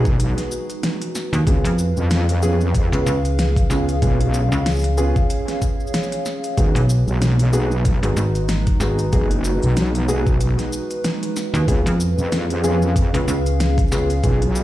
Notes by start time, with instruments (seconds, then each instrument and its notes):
Already playing: wobble bass B1, analog synth pad G#3 D#4 F#4 B4
0.05 kick, shaker
0.20 closed hi-hat, shaker
0.38 snare, closed hi-hat, shaker
0.52 shaker
0.70 closed hi-hat, shaker
0.83 snare, closed hi-hat, shaker
1.02 closed hi-hat, shaker
1.15 snare, shaker
1.33 fm bass D#2, closed hi-hat, shaker
1.47 wobble bass C#2, grand piano B3 C#4 F4 G#4, analog synth pad C#4 G#4 B4 F5, kick, closed hi-hat, shaker
1.64 fm bass F2, closed hi-hat, shaker
1.79 shaker
1.97 wobble bass F2, shaker
2.11 snare, closed hi-hat, shaker
2.29 closed hi-hat, shaker
2.43 grand piano B3 C#4 F4 G#4, shaker
2.61 shaker
2.75 kick, closed hi-hat, shaker
2.92 fm bass C#2, grand piano B3 C#4 F4 G#4, closed hi-hat, shaker
3.06 fm bass C#2, shaker
3.25 closed hi-hat, shaker
3.39 snare, closed hi-hat, shaker
3.56 kick, closed hi-hat, shaker
3.70 fm bass C#2, grand piano B3 C#4 F4 G#4, snare, shaker
3.89 closed hi-hat, shaker
4.02 wobble bass B1, grand piano B3 C#4 F4 G#4, analog synth pad C#5, kick, closed hi-hat, shaker
4.21 closed hi-hat
4.34 shaker
4.52 fm bass C#2, shaker
4.66 snare, closed hi-hat, shaker
4.69 shaker
4.71 shaker
4.74 shaker
4.77 shaker
4.79 shaker
4.82 closed hi-hat, shaker
4.97 grand piano B3 C#4 F4 G#4, shaker
5.16 kick, shaker
5.30 closed hi-hat, shaker
5.48 snare, closed hi-hat, shaker
5.62 kick, shaker
5.80 shaker
5.87 shaker
5.94 snare, closed hi-hat, shaker
6.03 shaker
6.12 closed hi-hat, shaker
6.26 snare, shaker
6.44 closed hi-hat, shaker
6.56 wobble bass G#1, analog synth pad G#3 D#4 F#4 B4, grand piano B3 D#4 F#4 G#4, kick, closed hi-hat, shaker
6.75 fm bass B1, closed hi-hat, shaker
6.90 shaker
7.07 wobble bass B1, shaker
7.22 snare, closed hi-hat, shaker
7.39 closed hi-hat, shaker
7.53 grand piano B3 D#4 F#4 G#4, shaker
7.72 shaker
7.85 kick, closed hi-hat, shaker
8.03 fm bass G#1, grand piano B3 D#4 F#4 G#4, closed hi-hat, shaker
8.17 fm bass G#1, shaker
8.35 closed hi-hat, shaker
8.49 snare, closed hi-hat, shaker
8.67 kick, closed hi-hat, shaker
8.80 fm bass G#1, grand piano B3 D#4 F#4 G#4, snare, shaker
8.99 closed hi-hat, shaker
9.13 wobble bass F#1, grand piano B3 D#4 F#4 G#4, kick, closed hi-hat, shaker
9.31 closed hi-hat, shaker
9.45 shaker
9.62 wobble bass B1, shaker
9.77 snare, closed hi-hat, shaker
9.95 closed hi-hat
10.08 grand piano B3 D#4 F#4 G#4, shaker
10.27 kick, shaker
10.41 closed hi-hat, shaker
10.59 snare, closed hi-hat, shaker
10.73 shaker
10.91 closed hi-hat, shaker
11.05 snare, closed hi-hat, shaker
11.23 closed hi-hat
11.37 snare, shaker
11.54 fm bass D#2, closed hi-hat, shaker
11.68 wobble bass C#2, grand piano B3 C#4 F4 G#4, analog synth pad C#4 G#4 F5, kick, closed hi-hat, shaker
11.86 fm bass F2, closed hi-hat, shaker
12.00 shaker
12.18 wobble bass F2, shaker
12.32 snare, closed hi-hat, shaker
12.50 closed hi-hat, shaker
12.64 grand piano B3 C#4 F4 G#4, shaker
12.82 shaker
12.96 kick, closed hi-hat, shaker
13.14 fm bass C#2, grand piano B3 C#4 F4 G#4, closed hi-hat, shaker
13.28 fm bass C#2, shaker
13.46 closed hi-hat, shaker
13.60 snare, closed hi-hat, shaker
13.78 kick, closed hi-hat, shaker
13.88 grand piano C#4 F4 G#4, shaker
13.92 fm bass C#2, grand piano B3, snare, shaker
14.10 closed hi-hat, shaker
14.23 wobble bass B1, grand piano B3 C#4 F4 G#4, analog synth pad A#4, kick, closed hi-hat, shaker
14.42 closed hi-hat
14.56 shaker